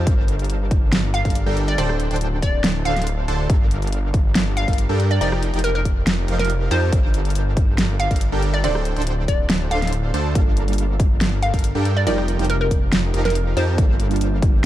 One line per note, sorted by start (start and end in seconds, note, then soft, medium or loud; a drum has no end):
0.00 0.11 C5 loud
0.07 1.23 G1 loud
0.07 1.22 G3 medium
0.07 1.22 D4 medium
0.07 1.22 A4 medium
0.07 1.22 A#4 medium
0.07 1.22 F5 loud
0.07 kick loud
0.07 closed hi-hat medium
0.28 closed hi-hat medium
0.39 closed hi-hat soft
0.44 closed hi-hat medium
0.50 closed hi-hat medium
0.71 kick loud
0.71 closed hi-hat medium
0.93 snare loud
0.93 closed hi-hat medium
1.14 1.33 F5 medium
1.14 closed hi-hat medium
1.25 1.44 G1 medium
1.25 1.37 G3 medium
1.25 1.37 D4 medium
1.25 1.37 A4 medium
1.25 1.37 A#4 medium
1.25 1.37 F5 loud
1.25 kick medium
1.25 closed hi-hat soft
1.30 closed hi-hat medium
1.35 closed hi-hat medium
1.46 1.76 G1 loud
1.46 1.76 G3 medium
1.46 1.76 D4 medium
1.46 1.76 A4 medium
1.46 1.76 A#4 medium
1.46 1.76 G5 loud
1.57 closed hi-hat medium
1.68 1.75 D5 medium
1.78 2.09 D1 loud
1.78 2.08 D3 medium
1.78 2.08 D4 medium
1.78 2.08 A4 medium
1.78 2.08 C5 medium
1.78 1.85 D5 medium
1.78 2.08 G5 loud
1.78 closed hi-hat medium
1.89 cross-stick medium
2.00 closed hi-hat medium
2.11 2.83 D1 medium
2.11 2.83 D3 medium
2.11 2.83 D4 medium
2.11 2.83 A4 medium
2.11 2.83 C5 medium
2.11 2.83 G5 medium
2.11 closed hi-hat soft
2.16 closed hi-hat medium
2.21 closed hi-hat medium
2.42 2.75 D5 loud
2.42 kick medium
2.42 closed hi-hat medium
2.64 snare loud
2.64 closed hi-hat medium
2.85 3.26 D1 medium
2.85 3.26 D3 medium
2.85 3.26 D4 medium
2.85 3.26 A4 medium
2.85 3.26 C5 medium
2.85 3.26 F5 medium
2.85 3.18 F5 medium
2.85 closed hi-hat medium
2.96 snare soft
2.96 closed hi-hat soft
3.02 closed hi-hat medium
3.07 closed hi-hat medium
3.28 3.48 D1 medium
3.28 3.47 D3 medium
3.28 3.47 D4 medium
3.28 3.47 A4 medium
3.28 3.47 C5 medium
3.28 3.47 A5 medium
3.28 closed hi-hat medium
3.50 4.66 G1 loud
3.50 4.65 G3 medium
3.50 4.65 D4 medium
3.50 4.65 A4 medium
3.50 4.65 F5 medium
3.50 kick loud
3.50 closed hi-hat medium
3.71 closed hi-hat medium
3.82 closed hi-hat soft
3.87 closed hi-hat medium
3.92 closed hi-hat medium
4.14 kick loud
4.14 closed hi-hat medium
4.35 snare loud
4.35 closed hi-hat medium
4.57 4.76 F5 medium
4.57 closed hi-hat medium
4.68 4.79 G3 medium
4.68 4.79 D4 medium
4.68 4.80 A4 medium
4.68 4.79 A#4 medium
4.68 4.80 F5 loud
4.68 kick medium
4.68 closed hi-hat soft
4.73 closed hi-hat medium
4.78 closed hi-hat medium
4.89 5.19 G2 medium
4.89 5.19 G3 medium
4.89 5.19 D4 medium
4.89 5.19 A4 medium
4.89 5.19 A#4 medium
4.89 5.19 G5 loud
5.00 closed hi-hat medium
5.11 5.17 D5 medium
5.21 5.51 F1 medium
5.21 5.51 F3 medium
5.21 5.51 D#4 medium
5.21 5.51 G4 medium
5.21 5.51 A#4 medium
5.21 5.28 D5 medium
5.21 5.51 G5 loud
5.21 closed hi-hat medium
5.32 cross-stick medium
5.43 closed hi-hat medium
5.54 6.26 F1 loud
5.54 6.26 F3 medium
5.54 6.26 D#4 medium
5.54 6.26 G4 medium
5.54 6.26 A#4 medium
5.54 6.26 G5 medium
5.54 closed hi-hat soft
5.59 closed hi-hat medium
5.64 5.71 A#4 medium
5.64 closed hi-hat medium
5.75 5.82 A#4 medium
5.85 kick medium
5.85 closed hi-hat medium
6.07 snare loud
6.07 closed hi-hat medium
6.28 6.69 F1 medium
6.28 6.69 F3 medium
6.28 6.69 D#4 medium
6.28 6.69 G4 medium
6.28 6.69 A#4 medium
6.28 6.69 F5 medium
6.28 closed hi-hat medium
6.39 6.59 A#4 medium
6.39 snare soft
6.39 closed hi-hat soft
6.45 closed hi-hat medium
6.50 closed hi-hat medium
6.71 6.94 F2 medium
6.71 6.89 F3 medium
6.71 6.89 D#4 medium
6.71 6.89 G4 medium
6.71 6.89 A#4 medium
6.71 6.97 C5 medium
6.71 6.89 A5 medium
6.71 closed hi-hat medium
6.92 8.09 G1 loud
6.92 8.08 G3 medium
6.92 8.08 D4 medium
6.92 8.08 A4 medium
6.92 8.08 F5 loud
6.92 kick loud
6.92 closed hi-hat medium
7.14 closed hi-hat medium
7.25 closed hi-hat soft
7.30 closed hi-hat medium
7.35 closed hi-hat medium
7.57 kick loud
7.57 closed hi-hat medium
7.78 snare loud
7.78 closed hi-hat medium
8.00 8.19 F5 medium
8.00 closed hi-hat medium
8.11 8.30 G1 medium
8.11 8.22 G3 medium
8.11 8.22 D4 medium
8.11 8.22 A4 medium
8.11 8.22 A#4 medium
8.11 8.22 F5 loud
8.11 kick medium
8.11 closed hi-hat soft
8.16 closed hi-hat medium
8.21 closed hi-hat medium
8.32 8.65 G1 loud
8.32 8.61 G3 medium
8.32 8.61 D4 medium
8.32 8.61 A4 medium
8.32 8.61 A#4 medium
8.32 8.61 G5 loud
8.42 closed hi-hat medium
8.54 8.60 D5 medium
8.64 8.94 D1 loud
8.64 8.94 D3 medium
8.64 8.94 D4 medium
8.64 8.94 A4 medium
8.64 8.94 C5 medium
8.64 8.71 D5 medium
8.64 8.94 G5 loud
8.64 closed hi-hat medium
8.75 cross-stick medium
8.85 closed hi-hat medium
8.96 9.69 D1 medium
8.96 9.69 D3 medium
8.96 9.69 D4 medium
8.96 9.69 A4 medium
8.96 9.69 C5 medium
8.96 9.69 G5 medium
8.96 closed hi-hat soft
9.02 closed hi-hat medium
9.07 closed hi-hat medium
9.28 9.61 D5 medium
9.28 kick medium
9.28 closed hi-hat medium
9.50 snare loud
9.50 closed hi-hat medium
9.71 10.12 D1 medium
9.71 10.11 D3 medium
9.71 10.11 D4 medium
9.71 10.11 A4 medium
9.71 10.11 C5 medium
9.71 10.11 F5 medium
9.71 10.04 F5 medium
9.71 closed hi-hat medium
9.82 snare soft
9.82 closed hi-hat soft
9.87 closed hi-hat medium
9.93 closed hi-hat medium
10.14 10.37 D2 loud
10.14 10.32 D3 medium
10.14 10.32 D4 medium
10.14 10.32 A4 medium
10.14 10.32 C5 medium
10.14 10.32 A5 medium
10.14 closed hi-hat medium
10.34 11.51 G1 loud
10.34 10.65 G3 medium
10.34 11.51 G3 medium
10.34 10.65 A#3 medium
10.34 10.65 D4 medium
10.34 11.51 D4 medium
10.34 10.66 F4 medium
10.34 11.51 A4 medium
10.34 10.66 A4 loud
10.34 11.51 A#4 medium
10.34 11.51 F5 medium
10.34 kick loud
10.34 closed hi-hat medium
10.57 closed hi-hat medium
10.66 12.03 G3 medium
10.66 12.04 A#3 medium
10.66 12.04 D4 medium
10.66 12.05 F4 medium
10.66 closed hi-hat medium
10.73 closed hi-hat medium
10.78 closed hi-hat medium
11.00 kick loud
11.00 closed hi-hat medium
11.21 snare loud
11.21 closed hi-hat medium
11.43 11.62 F5 medium
11.43 closed hi-hat medium
11.54 11.73 G1 medium
11.54 11.65 G3 medium
11.54 11.65 D4 medium
11.54 11.65 A4 medium
11.54 11.65 A#4 medium
11.54 11.65 F5 loud
11.54 kick medium
11.54 closed hi-hat soft
11.59 closed hi-hat medium
11.64 closed hi-hat medium
11.75 12.08 G2 loud
11.75 12.04 G3 medium
11.75 12.04 D4 medium
11.75 12.04 A4 medium
11.75 12.04 A#4 medium
11.75 12.04 G5 loud
11.85 closed hi-hat medium
11.97 12.03 D5 medium
12.06 12.37 F1 medium
12.06 12.37 F3 medium
12.06 12.36 G3 medium
12.06 12.36 C4 medium
12.06 12.37 D#4 medium
12.06 12.37 F4 medium
12.06 12.37 G4 medium
12.06 12.37 A#4 medium
12.06 12.14 D5 medium
12.06 12.37 G5 loud
12.06 closed hi-hat medium
12.18 cross-stick medium
12.28 closed hi-hat medium
12.37 13.12 F1 loud
12.37 13.12 F3 medium
12.37 13.75 G3 medium
12.37 13.75 C4 medium
12.37 13.76 D#4 medium
12.37 13.12 D#4 medium
12.37 13.76 F4 medium
12.37 13.12 G4 medium
12.37 13.12 A#4 medium
12.37 13.12 G5 medium
12.37 closed hi-hat soft
12.41 13.77 C5 medium
12.41 closed hi-hat medium
12.50 12.57 A#4 medium
12.50 closed hi-hat medium
12.61 12.67 A#4 medium
12.71 kick medium
12.71 closed hi-hat medium
12.93 snare loud
12.93 closed hi-hat medium
13.14 13.55 F1 medium
13.14 13.54 F3 medium
13.14 13.54 D#4 medium
13.14 13.54 G4 medium
13.14 13.54 A#4 medium
13.14 13.54 F5 medium
13.14 closed hi-hat medium
13.25 13.44 A#4 medium
13.25 snare soft
13.25 closed hi-hat soft
13.30 closed hi-hat medium
13.35 closed hi-hat medium
13.57 13.80 F2 medium
13.57 13.75 F3 medium
13.57 13.75 D#4 medium
13.57 13.75 G4 medium
13.57 13.75 A#4 medium
13.57 13.83 C5 medium
13.57 13.75 A5 medium
13.57 closed hi-hat medium
13.77 14.66 G1 loud
13.77 14.08 G3 medium
13.77 14.66 G3 medium
13.77 14.08 A#3 medium
13.77 14.08 D4 medium
13.77 14.66 D4 medium
13.77 14.08 F4 medium
13.77 14.09 A4 loud
13.77 14.66 A#4 medium
13.77 14.66 F5 medium
13.77 kick loud
13.77 closed hi-hat medium
14.00 closed hi-hat medium
14.09 14.66 G3 medium
14.09 14.66 A#3 medium
14.09 14.66 D4 medium
14.09 14.66 F4 medium
14.09 closed hi-hat soft
14.16 closed hi-hat medium
14.21 closed hi-hat medium
14.42 kick loud
14.42 closed hi-hat medium